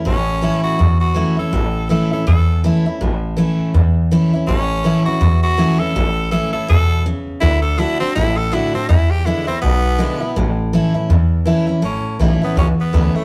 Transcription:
0.05 A1 A2 C#4
0.41 E3 A3 C#4 E4
0.64 F#4, muted upright bass stroke
0.79 E2
1.00 F#4
1.14 E3 A3 C#4 E4
1.37 C#4 E4 A4, muted upright bass stroke
1.53 A1 A2
1.89 E3 A3 C#4 E4 A4
2.11 C#4 E4 A4, muted upright bass stroke
2.27 E2 A4
2.64 E3 A3 C#4 E4
2.85 C#4 E4, muted upright bass stroke
3.01 A1 A2
3.37 E3 A3 C#4 E4
3.59 muted upright bass stroke
3.74 E2
4.11 E3 A3 C#4 E4
4.33 C#4 E4, muted upright bass stroke
4.47 A1 A2 C#4
4.84 E3 A3 C#4 E4
5.05 C#4 E4 F#4, muted upright bass stroke
5.21 E2
5.43 F#4
5.57 E3 A3 C#4 E4
5.79 C#4 E4 A4, muted upright bass stroke
5.96 A1 A2
6.31 E3 A3 C#4 E4 A4
6.53 C#4 E4 A4, muted upright bass stroke
6.68 E2 B2 A4
7.06 C#3
7.27 muted upright bass stroke
7.41 D2 D3 E4
7.62 A4
7.78 D3 A3 D4 E4 F#4
8.00 C4 D4 F#4, muted upright bass stroke
8.15 A1 A2 E4
8.37 A4
8.52 D3 A3 D4 E4 F#4
8.74 C4 D4 F#4, muted upright bass stroke
8.89 E2 E4
9.11 G4
9.26 D3 G#3 B3 E4
9.47 B3 C4 E4, muted upright bass stroke
9.62 B1 B2 B3
9.98 D3 G#3 B3 E4
10.20 B3 E4, muted upright bass stroke
10.36 A1 A2
10.73 E3 A3 C#4 E4
10.94 C#4 E4, muted upright bass stroke
11.09 E2
11.45 E3 A3 C#4 E4
11.67 C#4 E4, muted upright bass stroke
11.82 A1 A2 C#4
12.04 muted upright bass stroke
12.19 B1 E3 A3 C#4 E4
12.41 B3 C#4 E4, muted upright bass stroke
12.56 C#2 E2 C#4
12.78 B3, muted upright bass stroke
12.93 D2 E3 A3 C#4 E4
13.14 A3 C#4 E4, muted upright bass stroke

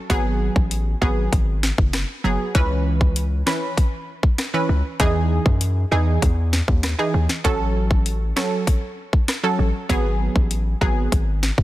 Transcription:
0.10 G#1 F#3 B3 G#4, kick, closed hi-hat
0.56 A1, kick
0.71 closed hi-hat
1.02 G#1 F#3 B3 G#4, kick
1.33 G#1, kick, closed hi-hat
1.63 snare
1.78 F#1, kick
1.93 cross-stick, snare, closed hi-hat
2.24 F#1 F#3 B3 G#4
2.55 C#2 E3 C#4 B4, kick, closed hi-hat
3.01 kick
3.16 closed hi-hat
3.46 E3 C#4 B4, cross-stick, snare
3.77 kick, closed hi-hat
4.23 kick
4.38 cross-stick, snare, closed hi-hat
4.54 E3 C#4 B4
4.69 C#2
5.00 E2 E3 D#4 G#4, kick, closed hi-hat
5.46 F#2, kick
5.61 closed hi-hat
5.91 E2 E3 D#4 G#4
6.22 E2, kick, closed hi-hat
6.53 snare
6.68 D#2, kick
6.83 cross-stick, snare, closed hi-hat
6.98 E3 D#4 G#4
7.14 D#2
7.29 snare
7.44 A1 F#3 C#4 A4, kick, closed hi-hat
7.91 kick
8.06 closed hi-hat
8.36 F#3 C#4 A4, cross-stick, snare
8.67 kick, closed hi-hat
9.13 kick
9.28 cross-stick, snare, closed hi-hat
9.43 F#3 C#4 A4
9.59 A1
9.89 G#1 F#3 B3 G#4, kick, closed hi-hat
10.36 A1, kick
10.51 closed hi-hat
10.81 G#1 F#3 B3 G#4, kick
11.12 G#1, kick, closed hi-hat
11.43 snare
11.58 F#1, kick

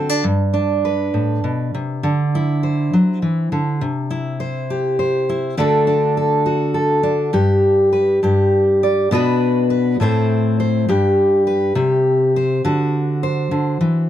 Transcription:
Already playing: D3 F#4 A4
0.09 D4
0.24 G2
0.54 D4
0.85 B4
1.14 A2
1.44 B2
1.75 C3
2.03 D3
2.35 E4
2.63 C5
2.93 F#3
3.22 E3
3.52 D3
3.81 C3
4.11 E4
4.40 C5
4.70 G4
4.99 C5
5.29 E4
5.57 D3 A3 D4 F#4 A4
5.87 D4
6.17 A4
6.46 F#4
6.74 A4
7.03 D4
7.33 G2 G4
7.93 B4
8.23 G2 G4
8.83 D5
9.11 B2 B3 D4 F#4 B4
9.70 B4
10.00 A2 A3 C4 E4 C5
10.60 C5
10.89 G2 G4
11.47 B4
11.75 C3 G4
12.36 C5
12.65 D3 F#4
13.23 C5
13.51 D3
13.81 E3

